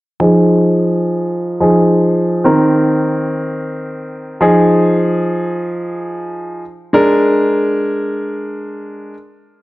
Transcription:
0.20 1.58 F3 medium
0.20 1.58 D#4 medium
0.20 1.58 G#4 medium
1.60 2.45 F3 medium
1.60 2.45 D#4 soft
1.60 2.45 G#4 medium
2.44 4.37 D#3 medium
2.44 4.37 C4 medium
2.44 4.37 A#4 medium
4.41 6.61 F3 medium
4.41 6.61 D#4 medium
4.41 6.62 G#4 medium
6.93 9.14 G#3 medium
6.93 9.14 D4 medium
6.93 9.14 A#4 medium

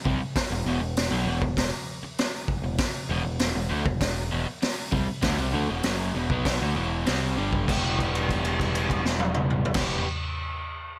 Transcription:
0.05 0.17 C2 medium
0.05 0.20 C3 medium
0.05 0.20 G3 loud
0.05 kick medium
0.18 muted picked electric bass stroke soft
0.18 muted overdriven electric guitar stroke medium
0.36 kick loud
0.36 snare loud
0.36 open hi-hat medium
0.50 0.63 E1 medium
0.50 0.65 E2 medium
0.50 0.67 B2 medium
0.64 0.79 E1 loud
0.64 0.81 E2 loud
0.64 0.81 B2 loud
0.80 1.09 E1 medium
0.80 1.06 E2 medium
0.80 1.06 B2 medium
0.97 snare loud
0.97 open hi-hat medium
1.11 1.25 B1 loud
1.11 1.26 B2 medium
1.11 1.27 F#3 medium
1.25 1.40 E1 loud
1.25 1.41 E2 medium
1.25 1.42 B2 medium
1.42 1.70 E1 medium
1.42 1.67 E2 medium
1.42 1.67 B2 medium
1.42 kick loud
1.57 kick loud
1.57 snare loud
1.57 open hi-hat medium
2.03 muted picked electric bass stroke soft
2.03 muted overdriven electric guitar stroke medium
2.18 snare loud
2.18 open hi-hat medium
2.48 kick medium
2.62 2.77 E1 medium
2.62 2.79 E2 medium
2.62 2.79 B2 medium
2.78 kick loud
2.78 snare loud
2.78 open hi-hat medium
3.09 3.23 E1 loud
3.09 3.24 E2 loud
3.09 3.23 B2 loud
3.24 3.39 E1 medium
3.24 3.39 E2 medium
3.24 3.39 B2 medium
3.39 3.54 E1 medium
3.39 3.54 E2 medium
3.39 3.54 B2 medium
3.39 snare loud
3.39 open hi-hat medium
3.55 3.69 E1 medium
3.55 3.71 E2 medium
3.55 3.69 B2 medium
3.69 3.85 D2 medium
3.69 3.84 D3 medium
3.69 3.85 A3 loud
3.85 4.00 E1 medium
3.85 4.00 E2 medium
3.85 4.00 B2 medium
3.85 kick loud
4.01 4.29 E1 medium
4.01 4.25 E2 medium
4.01 4.26 B2 medium
4.01 kick medium
4.01 snare loud
4.01 open hi-hat medium
4.31 4.46 E1 loud
4.31 4.46 E2 medium
4.31 4.46 B2 loud
4.47 muted overdriven electric guitar stroke medium
4.47 muted picked electric bass stroke soft
4.62 muted overdriven electric guitar stroke medium
4.62 muted picked electric bass stroke soft
4.62 snare loud
4.62 open hi-hat medium
4.92 5.07 C2 loud
4.92 5.06 C3 medium
4.92 5.07 G3 loud
4.92 kick medium
5.06 muted overdriven electric guitar stroke medium
5.06 muted picked electric bass stroke soft
5.22 5.37 D2 loud
5.22 5.37 D3 medium
5.22 5.38 A3 loud
5.22 kick loud
5.22 snare loud
5.22 open hi-hat medium
5.38 5.52 C2 loud
5.38 5.52 C3 medium
5.38 5.53 G3 loud
5.53 5.67 D2 loud
5.53 5.68 D3 loud
5.53 5.68 A3 loud
5.68 5.83 E1 loud
5.68 5.83 E2 medium
5.68 5.84 B2 loud
5.83 6.12 F#1 loud
5.83 6.13 F#2 loud
5.83 6.14 C#3 medium
5.83 6.14 F#3 medium
5.83 snare loud
5.83 open hi-hat medium
6.14 6.29 E1 medium
6.14 6.29 E2 medium
6.14 6.29 B2 medium
6.30 6.58 B1 loud
6.30 6.60 B2 medium
6.30 6.60 F#3 loud
6.30 6.60 B3 loud
6.30 kick medium
6.45 kick loud
6.45 snare loud
6.45 open hi-hat medium
6.61 6.75 D2 loud
6.61 6.75 D3 medium
6.61 6.76 A3 loud
6.74 7.04 E1 loud
6.74 7.05 E2 loud
6.74 7.05 B2 loud
6.74 7.06 E3 loud
7.06 7.36 C2 loud
7.06 7.36 C3 medium
7.06 7.36 G3 loud
7.06 7.36 C4 medium
7.06 snare loud
7.06 open hi-hat medium
7.36 7.65 G1 medium
7.36 7.66 G2 medium
7.36 7.67 D3 loud
7.36 7.67 G3 loud
7.53 kick medium
7.67 9.65 E1 loud
7.67 9.75 E2 medium
7.67 9.75 B2 medium
7.67 9.77 E3 loud
7.67 9.77 G3 loud
7.67 9.78 B3 medium
7.67 9.79 G4 loud
7.67 kick loud
7.67 crash medium
7.99 kick medium
7.99 crash soft
8.15 crash soft
8.29 kick medium
8.29 crash soft
8.45 crash soft
8.60 kick medium
8.60 crash soft
8.75 crash medium
8.90 kick medium
8.90 crash medium
9.06 snare loud
9.20 high tom loud
9.35 mid tom loud
9.50 mid tom medium
9.65 floor tom loud
9.74 10.01 E1 medium
9.74 10.04 E2 medium
9.74 10.04 B2 medium
9.74 10.04 E3 loud
9.74 10.05 G3 loud
9.74 kick loud
9.74 snare loud
9.74 crash loud
9.78 10.05 B3 loud
9.78 10.05 G4 loud

